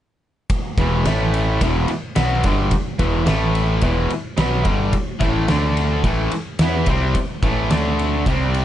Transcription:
0.50 kick loud
0.50 ride medium
0.78 1.04 E1 medium
0.78 1.05 E2 medium
0.78 1.05 B2 loud
0.78 1.05 E3 medium
0.78 kick loud
0.78 ride medium
1.05 1.57 A1 medium
1.05 1.60 A2 loud
1.05 1.60 E3 medium
1.05 1.61 A3 loud
1.05 snare loud
1.05 ride loud
1.34 ride medium
1.61 1.87 E1 medium
1.61 1.89 E2 medium
1.61 1.89 B2 medium
1.61 1.89 E3 loud
1.61 kick loud
1.61 ride loud
1.88 muted overdriven electric guitar stroke medium
1.88 ride medium
2.16 2.43 B1 medium
2.16 2.43 B2 medium
2.16 2.44 F#3 medium
2.16 2.43 B3 loud
2.16 snare loud
2.16 ride loud
2.44 2.70 G1 medium
2.44 2.71 G2 medium
2.44 2.71 D3 medium
2.44 2.72 G3 loud
2.44 kick loud
2.44 ride medium
2.71 kick medium
2.71 ride medium
2.99 3.26 E1 medium
2.99 3.27 E2 medium
2.99 3.25 B2 medium
2.99 3.25 E3 loud
2.99 kick loud
2.99 ride medium
3.25 3.79 A1 loud
3.25 3.81 A2 loud
3.25 3.82 E3 medium
3.25 3.81 A3 loud
3.25 snare loud
3.25 ride medium
3.55 ride medium
3.81 4.09 E1 loud
3.81 4.09 E2 medium
3.81 4.10 B2 loud
3.81 4.10 E3 loud
3.81 kick loud
3.81 ride medium
4.10 muted overdriven electric guitar stroke medium
4.10 ride medium
4.37 4.64 B1 medium
4.37 4.64 B2 medium
4.37 4.65 F#3 medium
4.37 4.66 B3 loud
4.37 snare loud
4.37 ride medium
4.64 4.92 G1 medium
4.64 4.92 G2 medium
4.64 4.92 D3 loud
4.64 4.93 G3 loud
4.64 kick loud
4.64 ride medium
4.93 kick loud
4.93 ride medium
5.19 5.47 A1 medium
5.19 5.47 A2 loud
5.19 5.48 E3 loud
5.19 5.47 A3 loud
5.19 kick loud
5.19 ride medium
5.48 6.01 D2 loud
5.48 6.03 D3 loud
5.48 6.03 A3 loud
5.48 6.04 D4 loud
5.48 snare loud
5.48 ride medium
5.77 ride medium
6.04 6.30 A1 loud
6.04 6.32 A2 medium
6.04 6.32 E3 loud
6.04 6.32 A3 medium
6.04 kick loud
6.04 ride medium
6.31 muted overdriven electric guitar stroke medium
6.31 ride medium
6.59 6.86 E2 medium
6.59 6.88 E3 medium
6.59 6.88 B3 medium
6.59 6.88 E4 medium
6.59 snare loud
6.59 ride loud
6.86 7.13 C2 medium
6.86 7.15 C3 medium
6.86 7.16 G3 medium
6.86 7.16 C4 loud
6.86 kick loud
6.86 ride medium
7.15 kick medium
7.15 ride medium
7.43 7.69 A1 medium
7.43 7.70 A2 loud
7.43 7.71 E3 loud
7.43 7.70 A3 medium
7.43 kick loud
7.43 ride medium
7.70 8.23 D2 loud
7.70 8.26 D3 loud
7.70 8.26 A3 medium
7.70 8.26 D4 loud
7.70 snare loud
7.70 ride medium
7.99 ride medium
8.26 8.65 C2 loud
8.26 8.65 C3 loud
8.26 8.65 G3 loud
8.26 8.65 C4 loud
8.26 kick medium
8.26 ride medium
8.54 ride medium

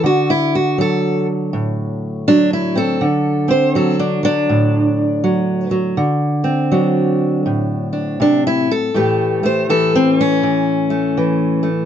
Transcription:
0.04 3.01 D3 medium
0.04 0.30 F#4 medium
0.30 0.54 E4 loud
0.55 0.79 F#4 medium
0.78 2.28 F#3 medium
0.78 1.26 A4 loud
1.53 2.98 A2 medium
2.28 3.51 F#3 medium
2.28 2.52 D4 loud
2.53 2.77 E4 medium
2.76 3.04 C4 soft
2.76 3.50 A4 medium
3.01 5.94 D3 medium
3.48 3.99 C4 soft
3.48 3.75 C5 medium
3.75 4.23 F#3 medium
3.75 4.00 A4 medium
3.99 4.24 D4 medium
4.23 5.22 F#3 medium
4.23 5.73 D4 loud
4.49 5.94 A2 medium
5.24 5.70 F#3 medium
5.71 5.95 F#3 soft
5.97 8.19 D3 medium
6.44 8.91 C4 soft
6.72 8.91 F#3 medium
6.72 7.91 D4 soft
7.46 8.91 A2 medium
7.93 8.20 D4 soft
8.20 8.66 C3 medium
8.20 8.46 D4 medium
8.47 8.71 E4 medium
8.71 9.45 A4 loud
8.94 11.85 A2 medium
8.94 9.69 E3 soft
8.94 9.41 A3 medium
8.94 10.19 G4 soft
9.43 9.95 A3 soft
9.43 9.70 C5 medium
9.69 10.42 E3 medium
9.69 9.94 A4 medium
9.95 10.19 C4 medium
10.21 11.68 C#4 medium
10.43 11.16 E3 medium
10.90 11.62 A3 soft
11.17 11.85 E3 medium
11.63 11.85 A3 soft

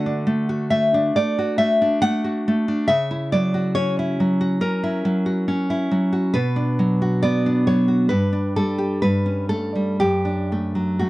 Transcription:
0.00 1.10 D3 medium
0.00 0.26 A3 medium
0.00 0.48 F#4 medium
0.00 0.68 F#5 loud
0.06 0.93 D4 medium
0.27 0.70 A3 medium
0.49 1.37 F#4 medium
0.70 1.15 A3 medium
0.70 1.12 E5 loud
0.94 1.80 D4 medium
1.16 1.58 A3 medium
1.16 1.57 D5 loud
1.39 2.23 F#4 medium
1.58 2.01 A3 medium
1.58 2.00 E5 loud
1.82 2.67 D4 medium
2.02 2.47 A3 medium
2.02 2.85 F#5 loud
2.24 2.89 F#4 medium
2.48 2.90 A3 medium
2.68 2.89 D4 medium
2.88 4.59 C#3 medium
2.88 3.29 E5 loud
3.11 3.98 E4 medium
3.32 4.19 F#3 medium
3.32 3.74 D5 loud
3.54 4.40 F#4 medium
3.75 4.60 C#4 medium
3.75 3.99 C#5 loud
3.99 4.82 E4 medium
4.20 5.04 F#3 medium
4.41 5.25 F#4 medium
4.61 5.47 C#4 medium
4.61 5.88 A#4 medium
4.84 5.69 E4 medium
5.05 5.90 F#3 medium
5.26 6.11 F#4 medium
5.48 6.35 C#4 medium
5.70 6.33 E4 medium
5.91 6.35 F#3 medium
6.13 6.35 F#4 medium
6.34 8.07 B2 medium
6.34 7.19 B4 loud
6.56 7.45 D4 medium
6.79 7.66 F#3 medium
7.02 7.87 F#4 medium
7.23 8.12 B3 medium
7.23 7.65 D5 loud
7.46 8.12 D4 medium
7.67 8.12 F#3 medium
7.67 8.09 C#5 medium
7.88 8.11 F#4 medium
8.09 9.01 G2 medium
8.09 8.54 B4 medium
8.33 9.03 D4 medium
8.56 9.04 G3 medium
8.56 9.02 A4 medium
8.78 9.03 G4 medium
9.02 9.99 G2 medium
9.02 9.49 B4 medium
9.26 10.01 C#4 medium
9.49 10.01 A3 medium
9.49 9.99 A4 medium
9.76 10.01 G3 soft
10.00 11.10 F#2 medium
10.00 10.96 G4 medium
10.25 11.10 D4 medium
10.52 10.99 A3 medium
10.75 11.10 F#3 soft
10.99 11.10 A3 medium
10.99 11.10 F#4 medium

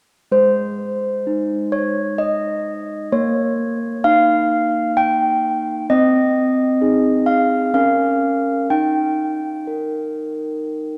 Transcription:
0.31 3.08 G#3 soft
0.31 1.69 C5 medium
1.27 3.12 D#4 soft
1.72 2.17 C#5 medium
2.18 3.08 D#5 medium
3.12 5.84 A#3 medium
3.12 4.01 C#5 medium
4.04 5.88 D#4 soft
4.04 4.93 F5 medium
4.97 5.85 G5 medium
5.90 7.70 C4 medium
5.90 7.23 D#5 medium
6.81 7.70 D#4 soft
6.81 7.70 G#4 soft
7.26 7.71 F5 medium
7.74 8.66 C#4 soft
7.74 8.65 A#4 soft
7.74 8.65 F5 medium
8.70 10.98 D#4 soft
8.70 10.98 G5 medium
9.67 10.98 A#4 soft

